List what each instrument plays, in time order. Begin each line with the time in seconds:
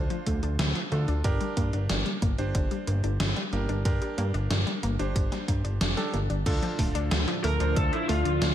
Already playing: electric grand piano D4 F4 C5
0.10 synth arpeggio sound F3, closed hi-hat
0.27 analog synth bass D2, synth arpeggio sound A3, kick, closed hi-hat
0.43 analog synth bass D2, synth arpeggio sound D4, closed hi-hat
0.59 analog synth bass D2, synth arpeggio sound D3, snare, closed hi-hat
0.75 synth arpeggio sound F3, closed hi-hat
0.92 analog synth bass D2, synth arpeggio sound A3, electric grand piano D4 F4 A4, closed hi-hat
1.08 analog synth bass D2, synth arpeggio sound D4, closed hi-hat
1.24 analog synth bass G1, synth arpeggio sound D3, electric grand piano D4 G4 A#4, kick, closed hi-hat
1.41 synth arpeggio sound G3, closed hi-hat
1.57 analog synth bass G2, synth arpeggio sound A#3, kick, closed hi-hat
1.73 analog synth bass G1, synth arpeggio sound D4, closed hi-hat
1.90 analog synth bass G1, synth arpeggio sound D3, snare, closed hi-hat
2.06 synth arpeggio sound G3, closed hi-hat
2.22 analog synth bass G1, synth arpeggio sound A#3, kick, closed hi-hat
2.38 analog synth bass G1, synth arpeggio sound D4, electric grand piano D4 G4 C5, closed hi-hat
2.55 analog synth bass G1, synth arpeggio sound D3, kick, closed hi-hat
2.71 synth arpeggio sound G3, closed hi-hat
2.87 analog synth bass G1, synth arpeggio sound A#3, closed hi-hat
3.04 analog synth bass G1, synth arpeggio sound D4, closed hi-hat
3.20 analog synth bass G1, synth arpeggio sound D3, snare, closed hi-hat
3.36 synth arpeggio sound G3, closed hi-hat
3.52 analog synth bass G1, synth arpeggio sound A#3, electric grand piano D4 G4 A#4, closed hi-hat
3.69 analog synth bass G1, synth arpeggio sound D4, closed hi-hat
3.85 analog synth bass G1, synth arpeggio sound D3, electric grand piano D4 G4 A#4, kick, closed hi-hat
4.02 synth arpeggio sound G3, closed hi-hat
4.18 analog synth bass G2, synth arpeggio sound A#3, closed hi-hat
4.34 analog synth bass G1, synth arpeggio sound D4, closed hi-hat
4.50 analog synth bass G1, synth arpeggio sound D3, snare, closed hi-hat
4.67 synth arpeggio sound G3, closed hi-hat
4.83 analog synth bass G1, synth arpeggio sound A#3, closed hi-hat
4.99 analog synth bass G1, synth arpeggio sound D4, electric grand piano D4 G4 C5, closed hi-hat
5.16 analog synth bass G1, synth arpeggio sound D3, kick, closed hi-hat
5.32 synth arpeggio sound G3, snare, closed hi-hat
5.48 analog synth bass G2, synth arpeggio sound A#3, kick, closed hi-hat
5.64 analog synth bass G1, synth arpeggio sound D4, closed hi-hat
5.81 analog synth bass F1, synth arpeggio sound D3, snare, closed hi-hat
5.97 synth arpeggio sound G3, electric grand piano D4 G4 A4, closed hi-hat
6.13 analog synth bass G1, synth arpeggio sound A#3, closed hi-hat
6.30 analog synth bass G1, synth arpeggio sound D4, closed hi-hat
6.46 analog synth bass D2, analog synth pad A2 D3 F3 D4 F4, synth arpeggio sound D3, electric grand piano D4 F4 A4, kick, closed hi-hat, crash
6.62 synth arpeggio sound F3, closed hi-hat
6.79 analog synth bass D1, synth arpeggio sound A3, kick, open hi-hat
6.95 analog synth bass D2, synth arpeggio sound D4, closed hi-hat
7.11 analog synth bass D2, synth arpeggio sound D3, snare, closed hi-hat
7.28 synth arpeggio sound F3, closed hi-hat
7.44 analog synth bass D2, synth arpeggio sound A3, lead electric guitar A#4, open hi-hat
7.60 analog synth bass D2, synth arpeggio sound D4, electric grand piano D4 F4 C5, closed hi-hat
7.76 analog synth bass D2, synth arpeggio sound D3, lead electric guitar A4, kick, closed hi-hat
7.93 synth arpeggio sound F3, lead electric guitar E4, closed hi-hat
8.09 analog synth bass D2, synth arpeggio sound A3, lead electric guitar F4, open hi-hat
8.25 analog synth bass D2, synth arpeggio sound D4, closed hi-hat
8.42 analog synth bass D2, synth arpeggio sound D3, snare, closed hi-hat